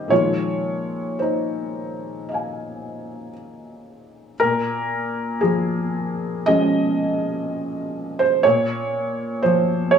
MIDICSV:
0, 0, Header, 1, 2, 480
1, 0, Start_track
1, 0, Key_signature, -5, "minor"
1, 0, Tempo, 1069519
1, 48, Time_signature, 4, 2, 24, 8
1, 1968, Tempo, 1034483
1, 2928, Tempo, 991736
1, 4637, End_track
2, 0, Start_track
2, 0, Title_t, "Felt piano"
2, 0, Program_c, 0, 0
2, 0, Control_c, 0, 64, 127
2, 0, Note_on_c, 0, 51, 56
2, 0, Note_on_c, 0, 55, 52
2, 0, Note_on_c, 0, 60, 59
2, 0, Note_on_c, 0, 67, 60
2, 0, Note_on_c, 0, 72, 77
2, 0, Note_on_c, 0, 75, 77
2, 0, Note_on_c, 0, 77, 102
2, 37, Note_on_c, 0, 46, 47
2, 42, Note_off_c, 0, 51, 0
2, 42, Note_on_c, 0, 51, 39
2, 46, Note_off_c, 0, 75, 0
2, 47, Note_on_c, 0, 73, 77
2, 48, Note_on_c, 0, 53, 38
2, 52, Note_on_c, 0, 56, 38
2, 57, Note_off_c, 0, 55, 0
2, 57, Control_c, 0, 64, 0
2, 57, Note_on_c, 0, 65, 59
2, 58, Note_off_c, 0, 60, 0
2, 58, Note_off_c, 0, 77, 0
2, 59, Note_off_c, 0, 72, 0
2, 61, Note_off_c, 0, 67, 0
2, 140, Control_c, 0, 64, 127
2, 521, Note_off_c, 0, 65, 0
2, 534, Note_off_c, 0, 73, 0
2, 534, Note_on_c, 0, 72, 53
2, 546, Note_on_c, 0, 63, 41
2, 1026, Note_on_c, 0, 75, 34
2, 1039, Note_on_c, 0, 77, 33
2, 1051, Note_on_c, 0, 80, 31
2, 1478, Note_off_c, 0, 63, 0
2, 1490, Note_off_c, 0, 72, 0
2, 1943, Note_off_c, 0, 46, 0
2, 1946, Note_off_c, 0, 51, 0
2, 1949, Note_off_c, 0, 53, 0
2, 1951, Note_off_c, 0, 56, 0
2, 1955, Note_off_c, 0, 75, 0
2, 1961, Note_off_c, 0, 77, 0
2, 1967, Note_off_c, 0, 80, 0
2, 1974, Note_on_c, 0, 70, 93
2, 1976, Control_c, 0, 64, 0
2, 1981, Note_on_c, 0, 46, 66
2, 2055, Control_c, 0, 64, 127
2, 2442, Note_off_c, 0, 70, 0
2, 2442, Note_on_c, 0, 68, 71
2, 2451, Note_on_c, 0, 53, 55
2, 2929, Note_off_c, 0, 68, 0
2, 2931, Note_on_c, 0, 75, 95
2, 2932, Note_off_c, 0, 53, 0
2, 2939, Note_on_c, 0, 53, 53
2, 2939, Note_on_c, 0, 61, 55
2, 2941, Note_on_c, 0, 56, 50
2, 3769, Note_on_c, 0, 72, 83
2, 3773, Note_off_c, 0, 75, 0
2, 3877, Note_off_c, 0, 53, 0
2, 3877, Note_off_c, 0, 61, 0
2, 3878, Note_off_c, 0, 56, 0
2, 3879, Note_off_c, 0, 46, 0
2, 3885, Note_on_c, 0, 73, 88
2, 3890, Note_off_c, 0, 72, 0
2, 3893, Note_on_c, 0, 46, 64
2, 3898, Control_c, 0, 64, 0
2, 3983, Control_c, 0, 64, 127
2, 4366, Note_on_c, 0, 72, 81
2, 4367, Note_off_c, 0, 73, 0
2, 4376, Note_on_c, 0, 53, 55
2, 4601, Note_on_c, 0, 73, 87
2, 4607, Note_off_c, 0, 72, 0
2, 4637, Note_off_c, 0, 46, 0
2, 4637, Note_off_c, 0, 53, 0
2, 4637, Note_off_c, 0, 73, 0
2, 4637, End_track
0, 0, End_of_file